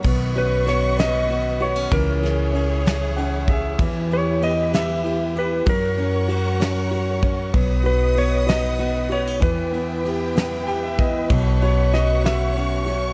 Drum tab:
CC |x-----|------|------|------|
RD |-xxxxx|xxxxxx|xxxxxx|xxxxxx|
SD |--oo--|-o-o--|---o--|---o--|
BD |o-----|o----o|o-----|o----o|

CC |------|------|------|
RD |xxxxxx|xxxxxx|xxxxxx|
SD |---o--|---o--|--oo--|
BD |o-----|o----o|o-----|